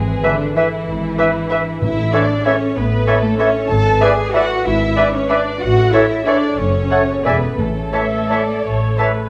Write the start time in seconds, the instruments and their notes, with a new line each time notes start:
Already playing: double bass section G#1, harp G#2 E4 G#4, cello section G#3, violin section G#4
0.07 harp B4
0.23 cello section D3, bassoon E3, violin section D4 E5, harp A4, viola section B4, french horn section B4 E5, clarinet B4, oboe E5, flute E5
0.40 harp B4
0.56 bassoon E3, cello section E3, violin section E4 E5, harp E4, french horn section B4 E5, viola section B4, clarinet B4, flute E5, oboe E5
0.73 harp B4
0.88 double bass section G#1, harp G#2
1.03 harp E4
1.18 bassoon E3, harp D4, viola section B4, clarinet B4, french horn section B4 E5, violin section E5, flute E5, oboe E5
1.34 harp B4
1.50 bassoon E3, clarinet B4, viola section B4, french horn section B4 E5, violin section E5, flute E5, oboe E5
1.67 harp B4
1.82 double bass section A1, timpani A2, harp A2, cello section E4, violin section E5
1.98 harp A4
2.13 bassoon E3, cello section D4, harp G#4, viola section A4 C#5, clarinet A4, oboe C#5, french horn section C#5 E5, violin section D5 E5, flute E5
2.30 harp A4
2.45 bassoon E3, cello section C#4, harp E4, clarinet A4, viola section A4 C#5, french horn section C#5 E5, oboe C#5, violin section C#5 E5, flute E5
2.61 harp A4
2.76 double bass section A1, harp A2, cello section B3, violin section B4
2.91 harp E4
3.07 bassoon E3, harp D4, clarinet A4, viola section A4 C#5, oboe C#5, french horn section C#5 E5, violin section E5, flute E5
3.23 cello section A3, violin section A4, harp A4
3.38 bassoon E3, cello section C#4, harp E4, clarinet A4, viola section A4 C#5, violin section C#5 E5, french horn section C#5 E5, oboe C#5, flute E5
3.55 harp A4
3.69 double bass section G#1, harp G#2, cello section A4, violin section A5
3.85 harp B4
4.00 bassoon E3, cello section G#4, clarinet B4, french horn section B4 D5, viola section B4 D5, oboe D5, violin section E5 G#5, flute E5
4.18 harp B4
4.34 bassoon E3, harp E4, cello section F#4, clarinet B4, viola section B4 D5, french horn section B4 D5, oboe D5, flute E5, violin section E5 F#5
4.50 harp B4
4.65 double bass section G#1, harp G#2, cello section E4, violin section E5
4.81 harp E4
4.96 bassoon E3, harp D4, clarinet B4, viola section B4 D5, french horn section B4 D5, oboe D5, violin section E5, flute E5
5.13 cello section C#4, harp B4, violin section C#5
5.29 bassoon E3, cello section D4, harp E4, clarinet B4, viola section B4 D5, french horn section B4 D5, oboe D5, violin section D5 E5, flute E5
5.45 harp B4
5.60 double bass section A1, harp A2, cello section F#4, violin section F#5
5.77 harp A4
5.93 bassoon E3, cello section E4, harp G#4, clarinet A4, viola section A4 C#5, french horn section A4 C#5, violin section C#5 E5, oboe C#5, flute E5
6.10 harp A4
6.26 bassoon E3, cello section D4, clarinet A4, french horn section A4 C#5, viola section A4 C#5, oboe C#5, violin section C#5 D5 E5, flute E5
6.43 harp A4
6.57 double bass section F#1, harp F#2, cello section C#4, violin section C#5
6.74 harp A4
6.90 bassoon A3, viola section A4 C#5, clarinet A4, french horn section A4 C#5, violin section C#5 F#5, oboe C#5, flute F#5
7.08 harp A4
7.24 double bass section E1, harp E2, bassoon E3, cello section B3, french horn section G#4 D5, violin section B4 E5 G#5, viola section B4 D5, clarinet D5, oboe E5, flute G#5
7.42 harp G#4 B4
7.58 double bass section A1, harp A2, timpani A2, cello section A3, violin section A4
7.75 harp C#5
7.92 bassoon E3, french horn section A4 C#5, harp B4, clarinet C#5, viola section E5, violin section E5 A5, oboe E5, flute A5
8.12 harp C#5
8.30 bassoon E3, harp A4, french horn section A4 C#5, clarinet C#5, viola section D5, violin section E5 A5, oboe E5, flute A5
8.47 harp C#5
8.64 double bass section A1, harp A2, viola section C#5
8.80 harp A4
8.98 bassoon E3, harp G#4, french horn section A4 C#5, viola section B4, clarinet C#5, violin section E5 A5, oboe E5, flute A5
9.17 harp C#5